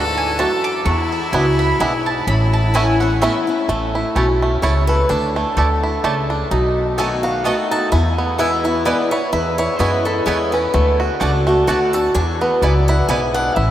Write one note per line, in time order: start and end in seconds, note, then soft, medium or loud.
0.00 0.43 D2 medium
0.00 0.36 G#2 medium
0.00 0.34 D3 medium
0.00 0.88 A4 loud
0.17 0.38 G#5 medium
0.39 0.84 F#2 medium
0.39 0.51 A3 medium
0.39 0.51 D4 medium
0.39 0.51 F#4 medium
0.39 0.64 A5 loud
0.64 0.85 D6 loud
0.85 1.19 E2 medium
0.85 1.33 E2 medium
0.85 2.28 E4 loud
0.85 1.11 C#6 medium
1.12 1.32 E5 medium
1.32 1.73 C#2 medium
1.32 1.78 F#2 loud
1.32 1.45 B3 medium
1.32 1.45 D4 medium
1.32 1.45 E4 medium
1.32 1.58 G#5 medium
1.59 1.80 B5 loud
1.80 2.20 B1 medium
1.80 2.25 G#2 loud
1.80 1.92 B3 medium
1.80 1.92 D4 medium
1.80 1.92 E4 medium
1.80 2.06 G#5 medium
2.06 2.27 A5 medium
2.27 3.26 A1 loud
2.27 3.17 A2 loud
2.27 3.44 E4 medium
2.27 2.53 B5 loud
2.53 2.74 A5 loud
2.74 2.99 E3 medium
2.74 2.86 A3 medium
2.74 2.99 B3 loud
2.74 3.00 C#4 medium
2.74 2.86 C#4 medium
2.74 2.99 E4 medium
2.74 2.87 E4 medium
2.74 3.00 G#5 medium
3.00 3.22 C#4 medium
3.00 3.21 E4 medium
3.00 3.21 F#5 loud
3.22 3.47 E3 medium
3.22 3.33 A3 medium
3.22 3.47 B3 medium
3.22 3.34 C#4 medium
3.22 3.47 C#4 loud
3.22 3.34 E4 medium
3.22 3.46 E4 medium
3.22 3.37 E5 medium
3.47 3.68 C#4 medium
3.47 3.68 E4 medium
3.68 4.02 A1 medium
3.68 4.59 A2 medium
3.68 4.42 A3 medium
3.95 4.59 E4 medium
4.15 4.56 B1 medium
4.15 4.61 B2 medium
4.15 4.25 A3 medium
4.15 4.84 C#4 medium
4.15 4.26 E4 medium
4.15 4.26 C#5 medium
4.15 4.26 A5 medium
4.42 5.36 A3 medium
4.62 5.03 C#2 medium
4.62 5.08 C#3 medium
4.62 4.73 A3 medium
4.62 4.73 E4 medium
4.62 5.10 E4 medium
4.62 4.87 C#5 medium
4.62 4.73 C#5 loud
4.62 4.73 A5 medium
4.87 5.58 A4 medium
4.87 5.10 B4 medium
5.09 5.43 D2 medium
5.09 5.56 D3 medium
5.09 5.78 D4 medium
5.09 6.51 A4 medium
5.36 6.00 A3 medium
5.56 5.97 D2 medium
5.56 6.02 D3 medium
5.56 5.67 A3 medium
5.56 5.67 E4 medium
5.56 6.25 A4 medium
5.56 5.67 D5 medium
5.56 5.67 A5 loud
5.83 6.47 E4 medium
6.04 6.44 C#2 medium
6.04 6.49 C#3 medium
6.04 6.14 A3 medium
6.04 6.51 A3 medium
6.04 6.14 E4 medium
6.04 6.14 D5 medium
6.04 6.14 A5 loud
6.30 6.51 D4 medium
6.51 7.50 B1 medium
6.51 7.41 B2 medium
6.51 7.19 D#4 medium
6.98 7.43 D#3 medium
6.98 7.43 A3 medium
6.98 7.08 B3 medium
6.98 7.44 B3 loud
6.98 7.08 F#4 medium
6.98 7.44 F#4 medium
6.98 7.66 A4 medium
6.98 7.08 D#5 medium
6.98 7.23 G#5 medium
6.98 7.09 A5 loud
7.23 7.88 F#4 medium
7.23 7.45 F5 medium
7.44 7.90 D#3 medium
7.44 7.92 A3 medium
7.44 7.90 A3 medium
7.44 7.55 B3 medium
7.44 7.91 B3 medium
7.44 7.55 F#4 medium
7.44 7.91 F#4 medium
7.44 7.55 D#5 loud
7.44 7.70 F#5 medium
7.44 7.55 A5 loud
7.71 7.92 D#4 medium
7.71 7.91 A5 loud
7.92 8.82 E2 medium
7.92 8.91 E2 medium
7.92 8.39 E4 medium
7.92 8.36 G#5 medium
8.18 8.82 B3 medium
8.38 8.64 E3 medium
8.38 8.64 G#3 medium
8.38 8.49 B3 medium
8.38 8.64 B3 medium
8.38 8.49 E4 medium
8.38 8.64 E4 medium
8.38 8.63 E4 medium
8.38 8.49 B4 medium
8.38 8.64 E5 medium
8.38 8.49 G#5 medium
8.64 8.85 B3 medium
8.64 8.85 E4 medium
8.64 9.11 E4 medium
8.64 8.85 C#5 medium
8.85 9.11 E3 medium
8.85 9.11 G#3 medium
8.85 8.96 B3 medium
8.85 9.33 B3 medium
8.85 9.11 B3 loud
8.85 8.96 E4 medium
8.85 9.11 E4 medium
8.85 8.96 B4 medium
8.85 9.11 D5 medium
8.85 8.96 G#5 medium
9.11 9.33 B3 soft
9.11 9.32 E4 medium
9.11 9.32 C#5 loud
9.33 10.23 E2 medium
9.33 9.66 E2 medium
9.33 9.58 E4 medium
9.33 9.58 B4 medium
9.58 10.05 E4 medium
9.58 9.79 C#5 loud
9.79 10.20 F#2 medium
9.79 10.25 E3 medium
9.79 10.25 G#3 medium
9.79 9.90 B3 medium
9.79 10.26 B3 medium
9.79 10.25 C#4 medium
9.79 9.90 E4 medium
9.79 10.25 E4 medium
9.79 10.05 B4 medium
9.79 9.90 C#5 medium
9.79 9.90 G#5 medium
10.05 10.70 E4 medium
10.05 10.25 A4 medium
10.26 10.67 E2 medium
10.26 10.52 E3 medium
10.26 10.52 G#3 medium
10.26 10.37 B3 medium
10.26 10.74 B3 medium
10.26 10.52 C#4 medium
10.26 10.37 E4 loud
10.26 10.51 E4 medium
10.26 10.52 G#4 medium
10.26 10.37 C#5 loud
10.26 10.37 G#5 loud
10.52 10.75 C#4 medium
10.52 10.74 C#4 soft
10.52 10.73 E4 medium
10.52 10.96 B4 medium
10.74 11.07 D2 medium
10.74 11.20 D3 medium
10.74 11.42 A3 medium
11.00 11.64 F#4 medium
11.20 11.61 C#2 medium
11.20 11.46 D3 medium
11.20 11.30 A3 medium
11.20 11.46 A3 medium
11.20 11.89 D4 medium
11.20 11.46 D4 medium
11.20 11.31 F#4 medium
11.20 11.46 F#4 medium
11.20 11.31 D5 medium
11.20 11.31 A5 medium
11.47 12.11 A3 medium
11.47 11.68 D4 medium
11.47 11.68 F#4 medium
11.67 12.08 D2 medium
11.67 11.93 D3 medium
11.67 11.78 A3 medium
11.67 11.93 A3 loud
11.67 11.94 D4 loud
11.67 12.15 F#4 medium
11.67 11.78 F#4 medium
11.67 11.93 F#4 medium
11.67 11.78 D5 loud
11.67 11.93 F#5 medium
11.67 11.79 A5 loud
11.93 12.15 D4 soft
11.93 12.15 F#4 medium
11.93 12.15 A4 medium
11.93 12.14 A5 loud
12.14 12.48 E2 medium
12.14 12.62 E2 loud
12.14 12.83 D4 medium
12.14 12.40 G#5 loud
12.41 13.10 B3 medium
12.41 12.62 B4 medium
12.62 13.02 C#2 medium
12.62 13.07 F#2 medium
12.62 12.72 B3 medium
12.62 12.73 E4 medium
12.62 12.89 E4 medium
12.62 12.88 D5 medium
12.62 12.73 D5 loud
12.62 12.73 G#5 medium
12.88 13.56 E4 medium
12.88 13.08 F#5 loud
13.08 13.49 B1 medium
13.08 13.54 G#2 medium
13.08 13.19 B3 medium
13.08 13.71 B3 medium
13.08 13.19 E4 medium
13.08 13.20 D5 loud
13.08 13.34 G#5 loud
13.08 13.20 G#5 medium
13.34 13.57 D4 medium
13.34 13.55 F#5 loud
13.55 13.71 A1 medium
13.55 13.71 A2 medium
13.55 13.71 E4 medium
13.55 13.71 E5 medium